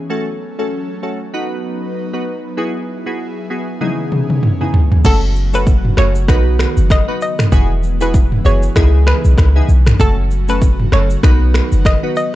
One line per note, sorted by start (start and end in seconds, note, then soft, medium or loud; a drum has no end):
0.10 3.78 F#3 medium
0.10 0.26 A3 medium
0.10 1.33 A3 medium
0.10 0.26 C#4 medium
0.10 1.33 C#4 medium
0.10 0.27 F#4 medium
0.10 1.33 A4 medium
0.10 0.27 A4 loud
0.59 0.71 A3 medium
0.59 0.71 C#4 medium
0.59 0.71 F#4 medium
0.59 0.71 A4 medium
1.03 1.19 A3 medium
1.03 1.19 C#4 medium
1.03 1.19 F#4 medium
1.03 1.19 A4 medium
1.33 2.06 B3 medium
1.33 5.01 B3 medium
1.33 2.06 D#4 medium
1.33 2.56 D#4 medium
1.33 2.06 F#4 medium
1.33 2.56 B4 medium
1.33 2.06 B4 loud
2.13 2.25 B3 medium
2.13 2.25 D#4 medium
2.13 2.26 F#4 medium
2.13 2.26 B4 medium
2.57 2.74 B3 medium
2.57 2.74 E4 medium
2.57 3.80 E4 medium
2.57 2.74 F#4 medium
2.57 5.02 G#4 medium
2.57 2.74 G#4 loud
3.06 3.18 B3 medium
3.06 3.18 E4 medium
3.06 3.18 F#4 medium
3.06 3.18 G#4 medium
3.50 3.67 B3 medium
3.50 3.67 E4 medium
3.50 3.67 F#4 medium
3.50 3.67 G#4 medium
3.81 4.54 C#3 medium
3.81 5.04 E3 medium
3.81 4.54 B3 medium
3.81 5.04 C#4 medium
3.81 4.54 D#4 medium
3.81 4.54 E4 medium
3.81 4.54 G#4 loud
3.81 high tom medium
4.12 mid tom medium
4.30 mid tom medium
4.43 mid tom medium
4.61 4.73 C#3 medium
4.61 4.73 B3 medium
4.61 4.73 D#4 medium
4.61 4.73 E4 medium
4.61 4.73 G#4 medium
4.74 floor tom loud
4.92 floor tom medium
5.04 5.94 F#1 loud
5.04 6.27 C#3 medium
5.04 7.50 F#3 medium
5.04 5.21 A3 loud
5.04 6.27 A3 medium
5.04 5.21 C#4 medium
5.04 8.72 F#4 loud
5.04 5.21 F#4 medium
5.04 5.21 A4 loud
5.04 kick loud
5.04 crash loud
5.04 shaker medium
5.36 shaker medium
5.53 5.65 A3 medium
5.53 5.66 C#4 medium
5.53 5.66 F#4 medium
5.53 5.66 A4 medium
5.53 5.65 B4 medium
5.53 shaker medium
5.67 kick loud
5.67 shaker medium
5.85 mid tom medium
5.97 6.30 F#1 loud
5.97 6.14 A3 medium
5.97 6.14 C#4 medium
5.97 6.14 F#4 medium
5.97 6.14 A4 medium
5.97 6.13 C#5 medium
5.97 finger snap medium
5.97 cross-stick medium
5.97 shaker medium
6.15 shaker medium
6.28 6.66 B1 loud
6.28 7.51 D#3 medium
6.28 7.01 B3 loud
6.28 9.96 B3 medium
6.28 7.01 D#4 medium
6.28 7.01 F#4 medium
6.28 7.01 B4 loud
6.28 finger snap medium
6.28 kick loud
6.28 cross-stick loud
6.28 shaker medium
6.59 finger snap medium
6.59 cross-stick loud
6.59 shaker medium
6.77 7.01 F#1 medium
6.77 shaker medium
6.90 7.06 D#5 medium
6.90 finger snap medium
6.90 kick loud
6.90 cross-stick medium
6.90 shaker medium
7.08 7.20 B3 medium
7.08 7.20 D#4 medium
7.08 7.20 F#4 medium
7.08 7.20 B4 medium
7.21 7.37 D#5 medium
7.21 shaker medium
7.39 finger snap medium
7.39 cross-stick medium
7.39 mid tom medium
7.39 shaker medium
7.52 8.41 E1 loud
7.52 8.75 E3 medium
7.52 9.97 G#3 medium
7.52 7.69 B3 loud
7.52 7.69 E4 medium
7.52 7.69 F#4 medium
7.52 7.69 G#4 loud
7.52 kick loud
7.52 shaker medium
7.83 shaker medium
8.01 8.13 B3 medium
8.01 8.13 E4 medium
8.01 8.13 F#4 medium
8.01 8.13 G#4 medium
8.01 8.13 B4 medium
8.01 shaker medium
8.14 kick loud
8.14 shaker medium
8.32 mid tom medium
8.45 8.69 F#1 loud
8.45 8.61 B3 medium
8.45 8.61 E4 medium
8.45 8.62 F#4 medium
8.45 8.62 G#4 medium
8.45 8.61 C#5 medium
8.45 shaker medium
8.63 shaker medium
8.76 9.13 C#2 loud
8.76 11.21 C#3 medium
8.76 9.98 E3 medium
8.76 9.48 B3 medium
8.76 9.49 D#4 medium
8.76 9.49 E4 medium
8.76 9.49 G#4 loud
8.76 finger snap medium
8.76 kick loud
8.76 cross-stick loud
8.76 shaker medium
9.07 9.23 B4 medium
9.07 finger snap medium
9.07 cross-stick loud
9.07 shaker medium
9.25 9.35 B1 loud
9.25 shaker medium
9.38 9.61 C#2 loud
9.38 finger snap medium
9.38 kick loud
9.38 cross-stick loud
9.38 shaker medium
9.56 9.68 B3 medium
9.56 9.68 D#4 medium
9.56 9.68 E4 medium
9.56 9.68 G#4 medium
9.69 9.92 B1 loud
9.69 shaker medium
9.87 finger snap medium
9.87 cross-stick medium
9.87 mid tom loud
9.87 shaker medium
9.99 10.88 F#1 loud
9.99 12.35 F#3 medium
9.99 10.16 A3 loud
9.99 11.22 A3 medium
9.99 10.16 C#4 medium
9.99 10.16 F#4 medium
9.99 12.35 F#4 loud
9.99 10.16 A4 loud
9.99 10.15 A4 loud
9.99 kick loud
9.99 shaker medium
10.31 shaker medium
10.48 10.60 A3 medium
10.48 10.61 C#4 medium
10.48 10.61 F#4 medium
10.48 10.61 A4 medium
10.48 10.60 B4 medium
10.48 shaker medium
10.62 kick loud
10.62 shaker medium
10.80 mid tom medium
10.92 11.16 F#1 loud
10.92 11.09 A3 medium
10.92 11.09 C#4 medium
10.92 11.09 F#4 medium
10.92 11.09 A4 medium
10.92 11.08 C#5 medium
10.92 finger snap medium
10.92 cross-stick medium
10.92 shaker medium
11.10 shaker medium
11.23 11.61 B1 loud
11.23 12.35 D#3 medium
11.23 11.96 B3 loud
11.23 12.35 B3 medium
11.23 11.96 D#4 medium
11.23 11.96 F#4 medium
11.23 11.96 B4 loud
11.23 finger snap medium
11.23 kick loud
11.23 cross-stick loud
11.23 shaker medium
11.54 finger snap medium
11.54 cross-stick loud
11.54 shaker medium
11.72 11.96 F#1 medium
11.72 shaker medium
11.85 12.01 D#5 medium
11.85 finger snap medium
11.85 kick loud
11.85 cross-stick medium
11.85 shaker medium
12.03 12.15 B3 medium
12.03 12.15 D#4 medium
12.03 12.15 F#4 medium
12.03 12.15 B4 medium
12.16 12.32 D#5 medium
12.16 shaker medium